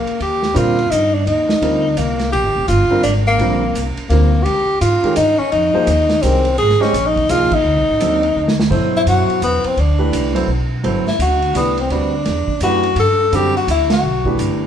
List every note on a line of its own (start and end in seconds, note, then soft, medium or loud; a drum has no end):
0.00 0.19 A#3 medium
0.07 muted upright bass stroke soft
0.07 ride soft
0.20 0.54 D#2 medium
0.20 0.59 G4 medium
0.20 ride soft
0.43 snare soft
0.54 0.90 A#2 medium
0.54 0.75 D3 medium
0.54 0.75 G3 medium
0.54 0.75 C4 medium
0.54 0.75 F4 medium
0.54 0.92 F4 medium
0.54 0.75 A#4 medium
0.54 hi-hat pedal medium
0.54 ride medium
0.79 ride soft
0.91 1.26 G2 medium
0.91 1.16 D#4 medium
0.91 hi-hat pedal medium
0.91 ride medium
1.14 1.26 D4 medium
1.27 1.61 D#2 medium
1.27 1.99 D#4 medium
1.27 ride medium
1.49 snare medium
1.61 1.96 D2 medium
1.61 1.82 D3 medium
1.61 1.82 G3 soft
1.61 1.82 C4 soft
1.61 1.82 F4 soft
1.61 1.82 A#4 medium
1.61 ride medium
1.97 2.32 C2 medium
1.97 2.31 A#3 medium
1.97 hi-hat pedal medium
1.97 ride medium
2.19 snare soft
2.19 ride soft
2.32 2.44 A#1 medium
2.32 2.65 G4 medium
2.32 ride medium
2.44 2.55 G1 soft
2.55 2.67 D#1 medium
2.68 2.89 G1 medium
2.68 3.01 F4 medium
2.68 hi-hat pedal medium
2.68 ride medium
2.90 3.02 D3 medium
2.90 3.02 G3 medium
2.90 3.02 C4 medium
2.90 3.02 F4 medium
2.90 3.03 A#4 medium
2.90 muted upright bass stroke soft
3.03 3.38 G#1 medium
3.03 3.14 D4 medium
3.03 hi-hat pedal medium
3.03 ride medium
3.27 3.82 A#3 medium
3.39 3.73 A#1 medium
3.39 3.60 D3 medium
3.39 3.60 G3 medium
3.39 3.60 C4 medium
3.39 3.60 F4 medium
3.39 3.60 A#4 medium
3.39 ride medium
3.75 3.95 C2 medium
3.75 hi-hat pedal medium
3.75 ride medium
3.97 muted upright bass stroke soft
3.97 ride soft
4.09 4.44 D2 medium
4.09 4.31 D3 medium
4.09 4.31 G3 soft
4.09 4.45 A#3 medium
4.09 4.31 C4 soft
4.09 4.31 F4 soft
4.09 4.31 A#4 medium
4.09 ride medium
4.44 4.66 C#2 medium
4.44 4.80 G4 medium
4.44 ride medium
4.68 muted upright bass stroke soft
4.81 5.02 G#2 medium
4.81 5.14 F4 medium
4.81 hi-hat pedal medium
4.81 ride medium
5.03 5.15 D#3 medium
5.03 5.15 G#3 medium
5.03 5.15 C#4 medium
5.03 5.15 G4 medium
5.03 5.15 A#4 medium
5.03 muted upright bass stroke soft
5.03 ride soft
5.16 5.38 G2 medium
5.16 5.40 D#4 medium
5.16 hi-hat pedal medium
5.16 ride medium
5.39 5.51 C#4 medium
5.39 muted upright bass stroke soft
5.52 5.73 F2 medium
5.52 6.24 D#4 medium
5.52 ride soft
5.74 5.86 F3 medium
5.74 5.86 A#3 medium
5.74 5.86 D#4 medium
5.74 5.86 G#4 medium
5.74 5.86 C5 medium
5.74 muted upright bass stroke soft
5.87 6.21 D#2 medium
5.87 hi-hat pedal medium
5.87 ride medium
6.09 snare soft
6.09 ride soft
6.22 6.57 C2 medium
6.22 6.43 D#3 soft
6.22 6.43 G#3 soft
6.22 6.58 C4 medium
6.22 6.43 C#4 soft
6.22 6.43 G4 soft
6.22 6.44 A#4 medium
6.22 hi-hat pedal medium
6.22 ride medium
6.45 ride soft
6.58 6.79 G#1 medium
6.58 6.83 G#4 medium
6.58 ride medium
6.70 snare soft
6.81 6.92 G#3 medium
6.81 6.92 C#4 soft
6.81 7.08 C#4 medium
6.81 6.92 G4 medium
6.81 6.92 C5 medium
6.81 6.93 D#5 medium
6.81 muted upright bass stroke soft
6.81 snare soft
6.93 7.28 A#1 medium
6.93 hi-hat pedal medium
6.93 ride medium
7.06 7.32 D#4 medium
7.16 kick soft
7.16 ride soft
7.29 7.50 C2 medium
7.29 7.49 F3 medium
7.29 7.50 A#3 soft
7.29 7.50 D#4 soft
7.29 7.55 F4 medium
7.29 7.50 G#4 soft
7.29 7.50 D#5 medium
7.29 hi-hat pedal medium
7.29 ride medium
7.51 8.59 D#4 medium
7.51 muted upright bass stroke soft
7.51 kick medium
7.51 ride medium
7.65 7.76 D2 medium
7.76 7.88 C2 medium
7.89 8.00 A1 medium
8.00 8.35 D#2 medium
8.00 8.20 F#3 soft
8.00 8.20 C4 soft
8.00 8.20 D4 soft
8.00 8.21 D#4 soft
8.00 8.20 A4 medium
8.00 hi-hat pedal soft
8.00 ride medium
8.23 ride soft
8.36 8.70 D2 medium
8.48 snare medium
8.60 snare medium
8.70 9.05 G2 medium
8.70 9.69 B2 medium
8.70 9.69 F#3 medium
8.70 9.69 E4 medium
8.70 9.69 A4 medium
8.70 9.69 C5 medium
8.70 kick medium
8.70 crash medium
8.97 9.02 E4 medium
9.06 9.27 F#2 medium
9.06 9.41 F#4 medium
9.06 hi-hat pedal medium
9.06 ride medium
9.29 muted upright bass stroke soft
9.29 ride soft
9.42 9.63 E2 medium
9.42 9.68 B3 medium
9.42 hi-hat pedal soft
9.42 ride medium
9.64 9.81 C4 medium
9.64 muted upright bass stroke soft
9.64 ride soft
9.77 10.12 D2 medium
9.77 10.50 D4 medium
9.77 ride soft
9.99 10.32 E3 soft
9.99 10.33 A3 soft
9.99 10.33 D4 medium
9.99 10.33 G4 medium
9.99 10.33 B4 medium
10.12 10.47 C2 medium
10.12 hi-hat pedal medium
10.12 ride medium
10.34 10.46 F#3 medium
10.34 10.47 B3 medium
10.34 10.47 E4 soft
10.34 10.47 A4 medium
10.34 10.47 C5 medium
10.34 ride medium
10.48 10.82 B1 medium
10.83 11.05 G1 medium
10.83 11.04 F#3 medium
10.83 11.04 B3 medium
10.83 11.04 E4 soft
10.83 11.04 A4 medium
10.83 11.04 C5 medium
10.83 ride medium
11.06 11.19 E4 medium
11.06 muted upright bass stroke soft
11.06 snare soft
11.19 11.53 D2 medium
11.19 11.54 F#4 medium
11.19 hi-hat pedal soft
11.19 ride medium
11.42 ride soft
11.54 11.89 C2 medium
11.54 11.75 E3 soft
11.54 11.75 A3 soft
11.54 11.81 B3 medium
11.54 11.75 D4 soft
11.54 11.76 G4 soft
11.54 11.75 D5 soft
11.54 hi-hat pedal medium
11.54 ride medium
11.78 11.93 C4 medium
11.78 ride soft
11.90 12.25 D2 medium
11.90 12.11 G3 medium
11.90 12.11 C4 medium
11.90 12.62 D4 medium
11.90 12.11 F#4 soft
11.90 12.11 B4 soft
11.90 12.11 D5 medium
11.90 ride soft
12.25 12.47 E2 medium
12.25 snare soft
12.25 ride medium
12.48 muted upright bass stroke soft
12.48 kick soft
12.60 12.95 F#2 medium
12.60 12.82 E3 medium
12.60 12.82 A3 medium
12.60 12.82 D4 medium
12.60 12.95 F#4 medium
12.60 12.82 G4 medium
12.60 12.83 B4 medium
12.60 hi-hat pedal medium
12.60 ride medium
12.83 ride soft
12.96 13.31 G2 medium
12.96 13.37 A4 medium
12.96 ride medium
13.32 13.67 F#2 medium
13.32 13.52 D3 medium
13.32 13.53 G3 medium
13.32 13.53 C4 medium
13.32 13.53 F#4 soft
13.32 13.56 G4 medium
13.32 13.53 A4 medium
13.32 hi-hat pedal soft
13.32 ride medium
13.57 13.68 F#4 medium
13.67 14.02 D2 medium
13.67 13.90 E4 medium
13.67 hi-hat pedal soft
13.67 ride medium
13.90 14.37 F#4 medium
13.90 snare medium
13.90 ride medium
14.03 14.37 B1 medium
14.25 14.67 E3 medium
14.25 14.67 A3 soft
14.25 14.67 D4 soft
14.25 14.67 G4 soft
14.25 14.67 B4 medium
14.25 kick medium
14.38 14.67 G1 medium
14.38 hi-hat pedal medium
14.38 ride medium